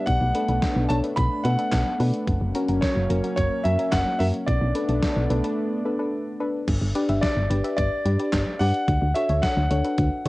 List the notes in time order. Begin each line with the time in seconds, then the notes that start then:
Already playing: B3 D4
0.06 B1 A3 F#5, kick, closed hi-hat
0.21 B1
0.35 D4 A4 B4, closed hi-hat
0.48 B1 D4 A4 B4, closed hi-hat
0.62 kick, snare, closed hi-hat
0.76 B1
0.89 B1 D4 A4 C#5 A5, closed hi-hat
1.04 D4 A4 B4, closed hi-hat
1.16 B1 B5, kick, closed hi-hat
1.44 B2 D4 A4 B4 F#5, closed hi-hat
1.59 D4 A4 B4, closed hi-hat
1.72 B1, kick, snare, clap, closed hi-hat
2.00 B2 D4 A4 B4, open hi-hat
2.14 closed hi-hat
2.27 F#1 F#3 A#3 C#4, kick, closed hi-hat
2.41 F#1
2.55 C#4 F#4 A#4, closed hi-hat
2.69 F#1 C#4 F#4 A#4, closed hi-hat
2.81 C#5, kick, snare, closed hi-hat
2.96 F#1
3.10 F#1 C#4 F#4 A#4, closed hi-hat
3.24 C#4 F#4 A#4, closed hi-hat
3.36 F#1 C#5, kick, closed hi-hat
3.64 F#2 C#4 F#4 A#4 E5, closed hi-hat
3.79 C#4 F#4 A#4, closed hi-hat
3.91 F#1 F#5, kick, snare, clap, closed hi-hat
4.19 F#2 C#4 F#4 A#4 E5, open hi-hat
4.34 closed hi-hat
4.46 B1 A3 B3 D4 D5, kick, closed hi-hat
4.61 B1
4.75 D4 A4 B4, closed hi-hat
4.89 B1 D4 A4 D5, closed hi-hat
5.03 kick, snare, closed hi-hat
5.16 B1
5.30 B1 D4 A4 B4, closed hi-hat
5.44 D4 A4 B4, closed hi-hat
5.85 D4 A4 B4
5.99 D4 A4 B4
6.40 D4 A4 B4
6.68 G1, kick, closed hi-hat, crash
6.82 G1
6.95 D4 G4 B4 D5, closed hi-hat
7.09 G1 D4 G4 B4 E5, closed hi-hat
7.21 D5, kick, snare, closed hi-hat
7.37 G1
7.50 G1 D4 G4 B4 D5, closed hi-hat
7.64 D4 G4 B4 E5, closed hi-hat
7.77 G1 D5, kick, closed hi-hat
8.05 G2 D4 G4 B4 D5, closed hi-hat
8.19 D4 G4 B4 D5, closed hi-hat
8.33 G1, kick, snare, clap, closed hi-hat
8.59 G2 D4 G4 B4 D5 F#5, open hi-hat
8.74 closed hi-hat
8.88 D2, kick, closed hi-hat
9.02 D2
9.14 D4 F#4 A4 C#5 E5, closed hi-hat
9.29 D2 D4 F#4 A4 C#5, closed hi-hat
9.42 F#5, kick, snare, closed hi-hat
9.57 D2
9.71 D2 D4 F#4 A4 C#5, closed hi-hat
9.84 D4 F#4 A4 B4, closed hi-hat
9.98 D2, kick, closed hi-hat